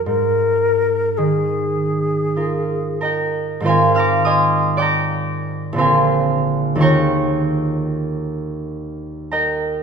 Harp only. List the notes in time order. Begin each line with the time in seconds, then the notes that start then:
Already playing: F#2 E3 F#4 G#4
0.06 G#2
1.18 D#3
2.36 F4 A#4
3.01 A#4 D#5 G5 A#5
3.60 G#2 D#3 C4 F4
3.65 A#4 C5 F5 G#5 C6
3.95 F5 A#5 F6
3.99 D6
4.25 D#5 G#5 C6 D#6
4.77 D5 G5 D6
4.82 A#5
5.73 A#1 D3 C4 F4
5.78 A#4 C5 F5 G#5 C6
6.75 D#2 D#3 A#3 F4
6.80 G#4 C#5 G5 A#5 C#6
9.31 A#4 D#5 G5 A#5